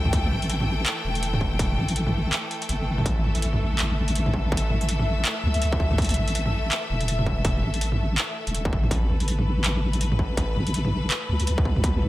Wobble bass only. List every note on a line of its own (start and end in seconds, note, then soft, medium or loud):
0.00 0.33 D2 medium
0.31 0.85 A1 loud
1.05 1.79 E1 loud
1.78 2.32 A1 loud
2.69 3.05 G1 medium
3.06 4.61 A1 loud
4.70 5.24 A1 loud
5.43 6.18 D2 medium
6.17 6.71 A1 loud
6.90 7.65 E1 loud
7.63 8.17 A1 loud
8.47 8.74 E1 medium
8.73 8.90 A1 medium
8.91 10.47 A1 loud
10.56 11.10 A1 loud
11.29 12.04 D2 medium
12.02 12.09 A1 loud